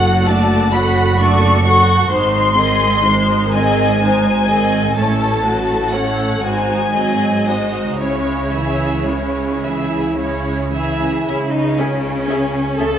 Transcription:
0.00 2.06 F#1 medium
0.00 2.06 F#2 medium
0.00 0.27 F#3 soft
0.00 0.27 F#4 soft
0.00 0.28 A4 soft
0.00 0.25 F#5 medium
0.00 0.27 F#5 soft
0.26 0.73 A3 medium
0.26 0.73 D4 soft
0.26 0.74 F#4 soft
0.26 0.74 D5 soft
0.26 0.73 A5 medium
0.73 1.19 F#3 soft
0.73 1.19 F#4 medium
0.73 1.20 A4 soft
0.73 1.20 F#5 soft
0.73 1.19 B5 medium
1.18 1.61 A3 soft
1.18 1.61 D4 soft
1.18 1.62 F#4 soft
1.18 1.62 D5 soft
1.18 2.12 C#6 medium
1.65 2.11 F#3 soft
1.65 2.10 F#4 soft
1.65 2.11 A4 soft
1.65 2.11 F#5 soft
2.10 4.92 G#1 medium
2.10 4.93 G#2 medium
2.10 2.53 G#3 soft
2.10 2.53 D#4 soft
2.10 2.54 C5 soft
2.10 3.53 C6 medium
2.57 3.04 D#3 soft
2.57 3.04 C4 soft
2.57 3.04 G#4 soft
2.57 3.05 D#5 soft
3.04 3.53 G#3 soft
3.04 3.53 D#4 soft
3.04 3.54 C5 soft
3.53 4.02 D#3 soft
3.53 4.02 C4 soft
3.53 4.02 G#4 soft
3.53 4.02 D#5 soft
3.53 4.95 G#5 medium
4.01 4.46 G#3 soft
4.01 4.46 D#4 soft
4.01 4.47 C5 soft
4.49 4.97 D#3 soft
4.49 4.97 C4 soft
4.49 4.96 G#4 soft
4.49 4.97 D#5 soft
4.96 6.40 A1 soft
4.96 6.41 A2 soft
4.96 5.41 A3 soft
4.96 5.41 C#4 soft
4.96 5.40 A4 soft
4.96 5.41 C#5 soft
4.96 5.91 A5 medium
5.44 5.93 F#3 soft
5.44 5.92 A3 soft
5.44 5.93 F#4 soft
5.44 5.93 A4 soft
5.93 6.44 A3 soft
5.93 6.44 C#4 soft
5.93 6.44 A4 soft
5.93 6.44 C#5 soft
5.93 6.44 F#5 medium
6.43 7.96 G#1 soft
6.43 7.97 G#2 soft
6.43 6.91 G#3 soft
6.43 6.92 D#4 soft
6.43 6.91 F#4 soft
6.43 6.91 C5 soft
6.43 7.47 G#5 medium
6.95 7.46 F#3 soft
6.95 7.47 C4 soft
6.95 7.46 G#4 soft
6.95 7.46 D#5 soft
7.47 8.00 G#3 soft
7.47 8.00 D#4 soft
7.47 8.00 F#4 soft
7.47 8.00 C5 soft
7.47 8.00 D#5 medium
7.99 11.03 C#2 soft
7.99 11.03 C#3 soft
7.99 8.52 G#3 soft
7.99 8.52 C#4 soft
7.99 8.51 E4 soft
7.99 9.61 C#5 medium
7.99 8.51 C#5 soft
8.54 9.10 E3 soft
8.54 9.10 E4 soft
8.54 9.09 G#4 soft
8.54 9.09 E5 soft
9.08 9.64 G#3 soft
9.08 9.64 C#4 soft
9.08 9.63 E4 soft
9.08 9.63 C#5 soft
9.63 10.19 E3 soft
9.63 10.19 E4 soft
9.63 10.18 G#4 soft
9.63 10.18 E5 soft
10.18 10.72 G#3 soft
10.18 10.71 C#4 soft
10.18 10.71 E4 soft
10.18 10.71 C#5 soft
10.75 11.29 E3 soft
10.75 11.29 E4 soft
10.75 11.28 G#4 soft
10.75 11.29 E5 soft
11.28 12.61 C#2 medium
11.28 12.61 C#3 medium
11.28 11.38 C#4 soft
11.28 11.53 E4 soft
11.28 11.38 G#4 soft
11.28 11.37 E5 soft
11.52 11.79 D#4 medium
11.78 11.88 C#4 soft
11.78 12.79 C#4 medium
11.78 11.88 G#4 soft
11.78 11.86 E5 soft
12.29 12.37 C#4 soft
12.29 12.38 G#4 soft
12.29 12.38 E5 soft
12.76 12.99 C#2 soft
12.76 12.99 C#3 medium
12.76 12.87 C#4 soft
12.76 12.87 G#4 soft
12.76 12.99 A4 medium
12.76 12.87 E5 soft

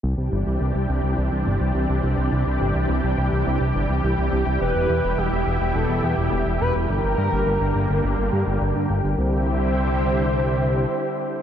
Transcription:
0.03 0.15 C2 loud
0.03 4.56 C3 medium
0.03 6.85 E3 medium
0.03 9.14 G3 medium
0.03 4.56 D4 medium
0.03 9.14 G4 medium
0.17 0.29 C2 medium
0.32 0.43 G1 medium
0.46 0.58 C2 medium
0.61 0.72 C2 loud
0.75 0.86 C2 medium
0.89 1.00 C2 medium
1.03 1.15 C2 medium
1.18 1.29 C2 loud
1.32 1.43 C2 medium
1.46 1.58 G1 medium
1.60 1.72 C2 medium
1.75 1.86 C2 loud
1.89 2.00 C2 medium
2.03 2.15 C2 medium
2.18 2.29 C2 medium
2.32 2.43 C2 loud
2.46 2.58 C2 medium
2.61 2.72 G1 loud
2.75 2.86 C2 medium
2.89 3.00 C2 loud
3.03 3.15 C2 medium
3.18 3.29 C2 medium
3.32 3.43 C2 medium
3.46 3.58 C2 loud
3.61 3.72 C2 medium
3.75 3.86 G1 medium
3.89 4.01 C2 medium
4.04 4.15 C2 loud
4.18 4.29 C2 medium
4.32 4.43 C2 medium
4.46 4.58 C2 medium
4.60 4.72 E1 loud
4.60 6.87 B2 medium
4.60 6.87 E4 medium
4.60 5.19 B4 loud
4.75 4.86 E1 medium
4.89 5.01 E2 loud
5.04 5.15 E1 medium
5.18 5.29 E1 loud
5.18 5.77 G4 loud
5.32 5.43 E1 medium
5.46 5.58 E1 loud
5.61 5.72 E1 medium
5.75 5.86 E1 loud
5.75 6.05 A4 loud
5.89 6.00 E1 medium
6.03 6.15 E2 medium
6.03 6.60 G4 loud
6.18 6.29 E1 medium
6.32 6.43 E1 loud
6.46 6.58 E1 medium
6.61 6.72 E1 loud
6.61 6.74 B4 loud
6.75 6.86 E1 medium
6.89 7.01 G1 loud
6.89 9.15 D3 medium
6.89 9.15 A#3 medium
6.89 8.57 A#4 loud
7.04 7.15 G1 medium
7.18 7.29 G2 loud
7.32 7.43 G1 medium
7.46 7.58 G1 loud
7.61 7.72 G1 medium
7.75 7.86 G1 loud
7.90 8.01 G1 medium
8.04 8.15 G1 loud
8.18 8.29 G1 medium
8.32 8.44 G2 medium
8.47 8.58 G1 medium
8.61 8.72 G1 loud
8.75 8.86 G2 medium
8.90 9.01 G1 medium
9.04 9.15 G1 medium
9.18 10.85 C2 loud
9.18 11.42 D3 medium
9.18 11.42 G3 medium
9.18 11.42 C4 medium
9.18 11.42 E4 medium
9.18 11.42 G4 medium
9.18 11.42 C5 loud

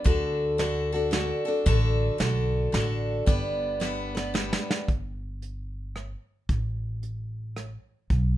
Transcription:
0.04 1.31 D2 medium
0.04 0.58 D3 medium
0.04 0.59 D4 medium
0.04 0.59 F#4 medium
0.04 0.60 A4 medium
0.04 kick loud
0.04 closed hi-hat medium
0.58 0.93 D3 medium
0.58 0.93 D4 medium
0.58 0.93 F#4 medium
0.58 0.91 A4 medium
0.58 snare medium
0.58 closed hi-hat medium
0.92 1.11 D4 soft
0.92 1.12 F#4 soft
0.92 1.12 A4 medium
1.11 1.46 D3 medium
1.11 1.47 D4 medium
1.11 1.46 F#4 medium
1.11 1.44 A4 medium
1.11 snare medium
1.11 closed hi-hat medium
1.45 1.65 D4 soft
1.45 1.66 F#4 medium
1.45 1.65 A4 medium
1.66 2.08 A1 medium
1.66 2.17 D3 medium
1.66 2.19 D4 medium
1.66 2.20 F#4 medium
1.66 2.21 A4 medium
1.66 kick loud
1.66 closed hi-hat medium
2.18 2.66 B1 medium
2.18 2.71 D3 medium
2.18 2.74 D4 medium
2.18 2.74 F#4 medium
2.18 2.74 A4 medium
2.18 snare medium
2.18 closed hi-hat medium
2.72 3.19 A1 medium
2.72 3.26 D3 medium
2.72 3.27 D4 medium
2.72 3.28 F#4 medium
2.72 3.28 A4 medium
2.72 snare medium
2.72 closed hi-hat medium
3.26 4.52 G1 medium
3.26 3.79 G3 medium
3.26 3.81 B3 medium
3.26 3.80 D4 medium
3.26 3.82 B4 medium
3.26 kick loud
3.26 closed hi-hat medium
3.80 4.15 G3 medium
3.80 4.16 B3 medium
3.80 4.15 D4 medium
3.80 4.14 B4 medium
3.80 snare medium
4.15 4.35 B3 medium
4.15 4.34 D4 soft
4.15 4.34 B4 soft
4.15 snare medium
4.34 4.88 G3 medium
4.34 4.89 B3 medium
4.34 4.88 D4 medium
4.34 4.89 B4 medium
4.34 snare medium
4.53 snare medium
4.71 snare medium
4.88 6.14 G1 medium
4.88 kick medium
4.88 closed hi-hat medium
5.42 closed hi-hat medium
5.96 cross-stick medium
5.96 closed hi-hat soft
6.49 7.75 A1 medium
6.49 kick medium
6.49 closed hi-hat medium
7.03 closed hi-hat medium
7.56 cross-stick medium
7.56 closed hi-hat soft
8.10 8.37 B1 medium
8.10 kick medium
8.10 closed hi-hat medium

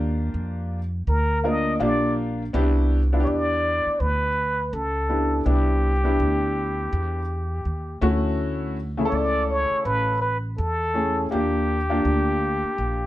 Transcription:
0.00 0.30 D#2 loud
0.00 0.78 A#3 medium
0.00 0.78 D4 medium
0.00 0.78 F4 medium
0.00 0.79 G4 medium
0.34 1.04 F2 medium
1.07 1.77 D2 medium
1.07 1.48 A#4 loud
1.44 1.74 A#3 medium
1.44 1.75 D4 medium
1.44 1.75 F4 medium
1.44 1.75 A#4 medium
1.44 1.82 D#5 loud
1.80 2.50 A#1 loud
1.80 2.41 A#3 medium
1.80 2.42 D4 medium
1.80 2.42 F4 medium
1.80 2.42 G4 medium
1.80 2.16 D5 medium
2.53 3.23 C2 loud
2.53 2.98 B3 medium
2.53 2.99 D4 medium
2.53 2.99 E4 medium
2.53 2.99 G4 loud
3.13 4.27 B3 medium
3.13 4.27 D4 medium
3.13 4.27 E4 medium
3.13 3.18 F4 medium
3.20 4.31 G4 medium
3.20 3.30 C#5 medium
3.27 3.83 E2 medium
3.27 4.02 D5 loud
3.86 muted upright bass stroke soft
4.00 4.70 D2 medium
4.00 4.75 B4 medium
4.73 5.43 C#2 loud
4.73 5.48 A4 medium
5.09 5.40 B3 medium
5.09 5.40 D4 medium
5.09 5.40 E4 medium
5.09 5.40 G4 medium
5.45 6.16 C2 loud
5.45 5.91 B3 medium
5.45 5.91 D4 medium
5.45 5.91 E4 medium
5.45 8.02 G4 medium
5.45 5.91 G4 medium
6.04 7.19 B3 medium
6.04 7.19 D4 medium
6.04 7.20 E4 medium
6.04 7.20 G4 medium
6.20 6.89 D2 loud
6.93 7.62 E2 loud
7.65 8.00 D#2 medium
8.01 9.08 D2 loud
8.01 8.75 A3 medium
8.01 8.75 C#4 medium
8.01 8.76 E4 medium
8.01 8.76 F#4 medium
8.97 10.12 C#3 medium
8.97 10.12 A3 medium
8.97 10.13 E4 medium
8.97 9.03 G#4 medium
9.05 10.16 A4 medium
9.05 9.16 C#5 medium
9.12 9.68 C#2 medium
9.12 9.52 D5 loud
9.51 9.85 C#5 loud
9.71 muted upright bass stroke soft
9.85 10.55 A1 loud
9.85 10.19 B4 loud
10.22 10.38 B4 medium
10.58 11.28 E2 medium
10.58 11.32 A4 loud
10.94 11.25 A3 medium
10.94 11.25 C#4 medium
10.94 11.26 E4 medium
10.94 11.26 G#4 medium
11.30 12.01 D#2 medium
11.30 11.76 A#3 medium
11.30 11.76 D4 medium
11.30 11.77 F4 medium
11.30 13.06 G4 medium
11.30 11.77 G4 medium
11.90 13.04 A#3 medium
11.90 13.05 D4 medium
11.90 13.05 F4 medium
11.90 13.05 G4 medium
12.05 12.61 D2 medium
12.64 muted upright bass stroke soft
12.78 13.06 A#1 medium

